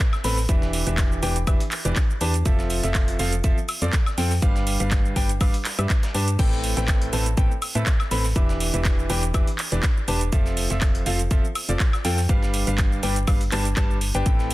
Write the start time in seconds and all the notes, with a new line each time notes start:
0.00 kick, snare, closed hi-hat, shaker
0.13 snare, high woodblock, shaker
0.24 A1 C4 A4 B4 B5, snare, open hi-hat, shaker
0.37 snare, open hi-hat, shaker
0.49 E1 E3 D4 G4 B4 E5, kick, closed hi-hat, shaker
0.62 snare, shaker
0.73 open hi-hat, shaker
0.87 E1 E3 D4 G4 B4 E5, closed hi-hat, shaker
0.98 kick, snare, clap, closed hi-hat, shaker
1.12 shaker
1.23 E1 E3 D4 G4 B4 G5, open hi-hat, shaker
1.36 closed hi-hat, shaker
1.47 E1 E3 D4 G4 B4 E5, kick, closed hi-hat, high woodblock, shaker
1.60 closed hi-hat, shaker
1.71 clap, open hi-hat, shaker
1.85 E1 E3 D4 G4 B4 D5, closed hi-hat, shaker
1.96 kick, snare, clap, closed hi-hat, shaker
2.10 shaker
2.21 E2 D4 G4 B4 A5, open hi-hat, shaker
2.34 closed hi-hat, shaker
2.45 F1 F3 C4 F4 A4 E5, kick, closed hi-hat, shaker
2.59 snare, shaker
2.70 open hi-hat, shaker
2.83 F1 F3 C4 F4 A4 E5, snare, closed hi-hat, shaker
2.94 kick, snare, clap, closed hi-hat, shaker
3.08 closed hi-hat, shaker
3.19 F1 F3 C4 F4 A4 F5, open hi-hat, shaker
3.33 closed hi-hat, shaker
3.44 F1 F3 C4 F4 A4 E5, kick, closed hi-hat, shaker
3.58 shaker
3.68 open hi-hat, high woodblock, shaker
3.82 F2 F3 C4 F4 A4 D5, closed hi-hat, shaker
3.93 kick, snare, clap, closed hi-hat, shaker
4.06 snare, high woodblock, shaker
4.18 F2 C4 F4 A4 G5, snare, open hi-hat, shaker
4.31 snare, open hi-hat, shaker
4.42 G1 G3 D4 G4 B4 F5, kick, closed hi-hat, shaker
4.56 snare, shaker
4.67 open hi-hat, shaker
4.80 G1 G3 D4 G4 B4 F5, closed hi-hat, shaker
4.91 kick, snare, clap, closed hi-hat, shaker
5.05 shaker
5.16 G1 G3 D4 G4 B4 G5, kick, open hi-hat, shaker
5.29 closed hi-hat, shaker
5.41 G1 G3 D4 G4 B4 F5, kick, open hi-hat, high woodblock, shaker
5.54 closed hi-hat, shaker
5.65 snare, clap, open hi-hat, shaker
5.79 G2 G3 D4 G4 B4 E5, closed hi-hat, high woodblock, shaker
5.90 kick, snare, clap, closed hi-hat, shaker
6.03 snare, shaker
6.14 G2 D4 G4 B4 A5, open hi-hat
6.28 closed hi-hat, shaker
6.39 A1 A2 C4 A4 B4 G5, kick, closed hi-hat, crash, shaker
6.52 snare, shaker
6.64 open hi-hat, shaker
6.77 A1 A2 C4 A4 B4 G5, snare, closed hi-hat, shaker
6.88 kick, snare, clap, closed hi-hat, shaker
7.02 closed hi-hat, shaker
7.13 A1 A2 C4 A4 B4 A5, open hi-hat, shaker
7.26 closed hi-hat, shaker
7.37 A1 A2 C4 A4 B4 G5, kick, closed hi-hat, shaker
7.51 shaker
7.62 open hi-hat, high woodblock, shaker
7.75 A2 C4 A4 B4 E5, closed hi-hat, shaker
7.86 kick, snare, clap, closed hi-hat, shaker
8.00 snare, high woodblock, shaker
8.11 A1 C4 A4 B4 B5, snare, open hi-hat, shaker
8.24 snare, open hi-hat, shaker
8.36 E1 E3 D4 G4 B4 E5, kick, closed hi-hat, shaker
8.49 snare, shaker
8.60 open hi-hat, shaker
8.74 E1 E3 D4 G4 B4 E5, closed hi-hat, shaker
8.85 kick, snare, clap, closed hi-hat, shaker
8.99 shaker
9.10 E1 E3 D4 G4 B4 G5, open hi-hat, shaker
9.23 closed hi-hat, shaker
9.34 E1 E3 D4 G4 B4 E5, kick, closed hi-hat, high woodblock, shaker
9.47 closed hi-hat, shaker
9.59 clap, open hi-hat, shaker
9.72 E1 E3 D4 G4 B4 D5, closed hi-hat, shaker
9.83 kick, snare, clap, closed hi-hat, shaker
9.97 shaker
10.08 E1 D4 G4 B4 A5, open hi-hat, shaker
10.21 closed hi-hat, shaker
10.32 F1 F3 C4 F4 A4 E5, kick, closed hi-hat, shaker
10.46 snare, shaker
10.57 open hi-hat, shaker
10.70 F1 F3 C4 F4 A4 E5, snare, closed hi-hat, shaker
10.81 kick, snare, clap, closed hi-hat, shaker
10.95 closed hi-hat, shaker
11.06 F1 F3 C4 F4 A4 F5, open hi-hat, shaker
11.19 closed hi-hat, shaker
11.31 F1 F3 C4 F4 A4 E5, kick, closed hi-hat, shaker
11.45 shaker
11.55 open hi-hat, high woodblock, shaker
11.69 F1 F3 C4 F4 A4 D5, closed hi-hat, shaker
11.80 kick, snare, clap, closed hi-hat, shaker
11.93 snare, high woodblock, shaker
12.05 F2 C4 F4 A4 G5, snare, open hi-hat, shaker
12.18 snare, open hi-hat, shaker
12.29 G1 G3 D4 G4 B4 F5, kick, closed hi-hat, shaker
12.43 snare, shaker
12.54 open hi-hat, shaker
12.67 G1 G3 D4 G4 B4 F5, closed hi-hat, shaker
12.78 kick, snare, clap, closed hi-hat, shaker
12.92 shaker
13.03 G1 G3 D4 G4 B4 G5, open hi-hat, shaker
13.16 closed hi-hat, shaker
13.27 G1 G3 D4 G4 B4 F5, kick, open hi-hat, high woodblock, shaker
13.41 closed hi-hat, shaker
13.52 G1 G3 D4 G4 B4 A5, clap, open hi-hat, shaker
13.65 closed hi-hat, shaker
13.76 G1 G3 D4 G4 B4 A5, kick, snare, clap, closed hi-hat, shaker
13.91 shaker
14.01 open hi-hat, shaker
14.14 G1 D4 G4 B4 G5, closed hi-hat, shaker
14.26 A1 A2 C4 A4 B4 G5, kick, closed hi-hat, shaker
14.39 snare, shaker
14.51 open hi-hat, shaker